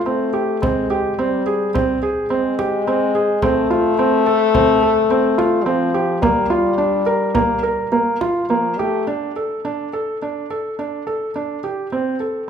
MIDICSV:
0, 0, Header, 1, 4, 480
1, 0, Start_track
1, 0, Tempo, 560224
1, 535, Time_signature, 5, 2, 24, 8
1, 5813, Tempo, 569260
1, 10628, End_track
2, 0, Start_track
2, 0, Title_t, "Felt piano"
2, 0, Program_c, 0, 0
2, 51, Note_on_c, 0, 60, 66
2, 246, Note_off_c, 0, 60, 0
2, 287, Note_on_c, 0, 67, 65
2, 485, Note_off_c, 0, 67, 0
2, 532, Note_on_c, 0, 60, 70
2, 728, Note_off_c, 0, 60, 0
2, 774, Note_on_c, 0, 67, 67
2, 969, Note_off_c, 0, 67, 0
2, 1016, Note_on_c, 0, 60, 76
2, 1210, Note_off_c, 0, 60, 0
2, 1253, Note_on_c, 0, 68, 65
2, 1448, Note_off_c, 0, 68, 0
2, 1494, Note_on_c, 0, 60, 73
2, 1689, Note_off_c, 0, 60, 0
2, 1736, Note_on_c, 0, 68, 64
2, 1930, Note_off_c, 0, 68, 0
2, 1972, Note_on_c, 0, 60, 74
2, 2168, Note_off_c, 0, 60, 0
2, 2217, Note_on_c, 0, 67, 66
2, 2411, Note_off_c, 0, 67, 0
2, 2462, Note_on_c, 0, 60, 73
2, 2654, Note_off_c, 0, 60, 0
2, 2698, Note_on_c, 0, 68, 66
2, 2892, Note_off_c, 0, 68, 0
2, 2937, Note_on_c, 0, 60, 80
2, 3132, Note_off_c, 0, 60, 0
2, 3174, Note_on_c, 0, 65, 67
2, 3369, Note_off_c, 0, 65, 0
2, 3416, Note_on_c, 0, 60, 80
2, 3610, Note_off_c, 0, 60, 0
2, 3656, Note_on_c, 0, 69, 71
2, 3850, Note_off_c, 0, 69, 0
2, 3891, Note_on_c, 0, 60, 76
2, 4087, Note_off_c, 0, 60, 0
2, 4134, Note_on_c, 0, 69, 66
2, 4328, Note_off_c, 0, 69, 0
2, 4374, Note_on_c, 0, 60, 73
2, 4568, Note_off_c, 0, 60, 0
2, 4610, Note_on_c, 0, 65, 69
2, 4806, Note_off_c, 0, 65, 0
2, 4849, Note_on_c, 0, 60, 75
2, 5045, Note_off_c, 0, 60, 0
2, 5093, Note_on_c, 0, 67, 68
2, 5287, Note_off_c, 0, 67, 0
2, 5331, Note_on_c, 0, 58, 75
2, 5526, Note_off_c, 0, 58, 0
2, 5570, Note_on_c, 0, 65, 65
2, 5766, Note_off_c, 0, 65, 0
2, 5807, Note_on_c, 0, 62, 71
2, 6003, Note_off_c, 0, 62, 0
2, 6048, Note_on_c, 0, 70, 69
2, 6243, Note_off_c, 0, 70, 0
2, 6286, Note_on_c, 0, 58, 71
2, 6482, Note_off_c, 0, 58, 0
2, 6527, Note_on_c, 0, 70, 61
2, 6724, Note_off_c, 0, 70, 0
2, 6771, Note_on_c, 0, 58, 67
2, 6968, Note_off_c, 0, 58, 0
2, 7015, Note_on_c, 0, 65, 62
2, 7212, Note_off_c, 0, 65, 0
2, 7258, Note_on_c, 0, 58, 68
2, 7455, Note_off_c, 0, 58, 0
2, 7506, Note_on_c, 0, 67, 62
2, 7700, Note_off_c, 0, 67, 0
2, 7742, Note_on_c, 0, 62, 69
2, 7938, Note_off_c, 0, 62, 0
2, 7986, Note_on_c, 0, 69, 54
2, 8180, Note_off_c, 0, 69, 0
2, 8227, Note_on_c, 0, 62, 62
2, 8421, Note_off_c, 0, 62, 0
2, 8468, Note_on_c, 0, 69, 59
2, 8662, Note_off_c, 0, 69, 0
2, 8712, Note_on_c, 0, 62, 58
2, 8905, Note_off_c, 0, 62, 0
2, 8950, Note_on_c, 0, 69, 55
2, 9142, Note_off_c, 0, 69, 0
2, 9189, Note_on_c, 0, 62, 60
2, 9381, Note_off_c, 0, 62, 0
2, 9424, Note_on_c, 0, 69, 58
2, 9618, Note_off_c, 0, 69, 0
2, 9667, Note_on_c, 0, 62, 63
2, 9859, Note_off_c, 0, 62, 0
2, 9905, Note_on_c, 0, 67, 54
2, 10096, Note_off_c, 0, 67, 0
2, 10146, Note_on_c, 0, 60, 65
2, 10335, Note_off_c, 0, 60, 0
2, 10380, Note_on_c, 0, 69, 52
2, 10571, Note_off_c, 0, 69, 0
2, 10628, End_track
3, 0, Start_track
3, 0, Title_t, "French horn"
3, 0, Program_c, 1, 60
3, 42, Note_on_c, 1, 57, 84
3, 530, Note_on_c, 1, 56, 84
3, 543, Note_off_c, 1, 57, 0
3, 1002, Note_off_c, 1, 56, 0
3, 1007, Note_on_c, 1, 55, 72
3, 1711, Note_off_c, 1, 55, 0
3, 1970, Note_on_c, 1, 56, 103
3, 2937, Note_on_c, 1, 57, 113
3, 2950, Note_off_c, 1, 56, 0
3, 4845, Note_on_c, 1, 53, 85
3, 4858, Note_off_c, 1, 57, 0
3, 5327, Note_on_c, 1, 55, 89
3, 5340, Note_off_c, 1, 53, 0
3, 7027, Note_off_c, 1, 55, 0
3, 7245, Note_on_c, 1, 53, 74
3, 7499, Note_on_c, 1, 57, 90
3, 7512, Note_off_c, 1, 53, 0
3, 7742, Note_off_c, 1, 57, 0
3, 10628, End_track
4, 0, Start_track
4, 0, Title_t, "Frame drum"
4, 539, Note_on_c, 9, 64, 54
4, 625, Note_off_c, 9, 64, 0
4, 1502, Note_on_c, 9, 64, 54
4, 1588, Note_off_c, 9, 64, 0
4, 2218, Note_on_c, 9, 64, 43
4, 2304, Note_off_c, 9, 64, 0
4, 2933, Note_on_c, 9, 64, 53
4, 3019, Note_off_c, 9, 64, 0
4, 3655, Note_on_c, 9, 64, 17
4, 3741, Note_off_c, 9, 64, 0
4, 3895, Note_on_c, 9, 64, 52
4, 3981, Note_off_c, 9, 64, 0
4, 4616, Note_on_c, 9, 64, 44
4, 4702, Note_off_c, 9, 64, 0
4, 5335, Note_on_c, 9, 64, 55
4, 5420, Note_off_c, 9, 64, 0
4, 6046, Note_on_c, 9, 64, 17
4, 6130, Note_off_c, 9, 64, 0
4, 6288, Note_on_c, 9, 64, 53
4, 6372, Note_off_c, 9, 64, 0
4, 7017, Note_on_c, 9, 64, 44
4, 7101, Note_off_c, 9, 64, 0
4, 7265, Note_on_c, 9, 64, 18
4, 7349, Note_off_c, 9, 64, 0
4, 7509, Note_on_c, 9, 64, 18
4, 7593, Note_off_c, 9, 64, 0
4, 10628, End_track
0, 0, End_of_file